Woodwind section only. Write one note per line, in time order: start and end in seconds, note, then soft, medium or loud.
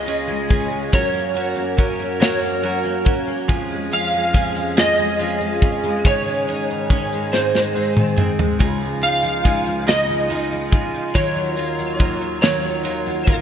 0.00 0.90 C#2 medium
0.00 0.90 C#3 medium
0.00 0.90 F4 medium
0.00 0.90 G#4 medium
0.92 3.31 F#2 medium
0.92 3.31 F#3 medium
0.92 7.28 C#4 medium
0.92 3.31 A#4 medium
3.48 6.02 F2 medium
3.48 6.01 F3 medium
3.48 8.55 G#4 medium
6.04 8.57 G#2 medium
6.04 8.57 D#3 medium
7.31 8.58 C4 medium
8.60 10.99 C#2 medium
8.60 10.99 C#3 medium
8.60 10.99 D#4 medium
8.60 13.41 F4 medium
11.16 13.41 D#2 medium
11.16 13.41 D#3 medium
11.16 13.41 F#3 medium